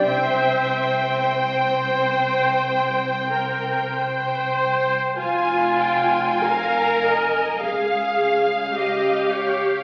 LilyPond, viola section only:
\new Staff \with { instrumentName = "Viola section" } { \time 4/4 \key f \minor \tempo 4 = 48 <c'' e''>4 c''4. bes'8 c''4 | f'4 bes'4 aes'4 g'4 | }